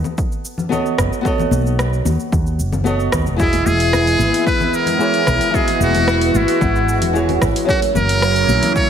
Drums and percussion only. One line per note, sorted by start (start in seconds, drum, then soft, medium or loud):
0.04 low conga medium
0.04 shaker soft
0.18 kick loud
0.18 shaker soft
0.32 shaker soft
0.45 shaker medium
0.58 low conga medium
0.58 shaker soft
0.72 low conga medium
0.72 shaker soft
0.86 shaker soft
0.98 kick medium
0.98 cross-stick medium
0.98 shaker medium
1.13 shaker soft
1.25 kick loud
1.25 shaker soft
1.38 high conga medium
1.38 low conga medium
1.38 shaker soft
1.51 high conga loud
1.51 shaker medium
1.66 shaker soft
1.79 cross-stick medium
1.79 shaker soft
1.93 shaker soft
2.05 high conga medium
2.05 low conga medium
2.05 shaker medium
2.20 shaker soft
2.32 kick loud
2.32 shaker soft
2.47 shaker soft
2.60 shaker medium
2.72 low conga medium
2.72 shaker soft
2.86 shaker soft
3.00 shaker soft
3.12 kick medium
3.12 cross-stick medium
3.12 shaker medium
3.26 shaker soft
3.39 kick loud
3.39 shaker soft
3.53 open hi-hat soft
3.53 high conga medium
3.53 shaker soft
3.66 high conga medium
3.66 shaker medium
3.80 open hi-hat soft
3.80 shaker soft
3.93 cross-stick medium
3.93 low conga medium
3.93 shaker soft
4.07 open hi-hat soft
4.07 shaker soft
4.19 high conga medium
4.19 shaker medium
4.34 open hi-hat medium
4.34 shaker soft
4.47 kick loud
4.47 shaker soft
4.60 low conga medium
4.60 shaker soft
4.74 shaker medium
4.86 open hi-hat medium
4.86 low conga medium
4.86 shaker soft
5.00 shaker soft
5.14 open hi-hat soft
5.14 shaker soft
5.27 kick medium
5.27 cross-stick medium
5.27 low conga medium
5.27 shaker medium
5.41 open hi-hat soft
5.41 shaker soft
5.54 kick loud
5.54 shaker soft
5.68 open hi-hat soft
5.68 high conga soft
5.68 shaker soft
5.81 high conga medium
5.81 shaker medium
5.95 open hi-hat soft
5.95 low conga medium
5.95 shaker soft
6.08 cross-stick medium
6.08 shaker soft
6.21 open hi-hat soft
6.21 shaker soft
6.35 high conga medium
6.35 shaker medium
6.48 open hi-hat medium
6.48 shaker soft
6.61 kick loud
6.61 low conga medium
6.61 shaker soft
6.76 shaker soft
6.89 shaker medium
7.02 open hi-hat medium
7.02 low conga medium
7.02 shaker soft
7.16 shaker soft
7.29 open hi-hat soft
7.29 low conga medium
7.29 shaker soft
7.42 kick medium
7.42 cross-stick medium
7.42 shaker medium
7.56 open hi-hat medium
7.56 shaker soft
7.69 kick loud
7.69 shaker soft
7.82 open hi-hat soft
7.82 high conga medium
7.82 shaker soft
7.95 high conga medium
7.95 low conga medium
7.95 shaker medium
8.09 open hi-hat medium
8.09 shaker soft
8.22 cross-stick medium
8.22 shaker soft
8.36 open hi-hat soft
8.36 shaker soft
8.49 high conga medium
8.49 shaker medium
8.63 open hi-hat medium
8.63 low conga medium
8.63 shaker soft
8.76 kick loud
8.76 shaker soft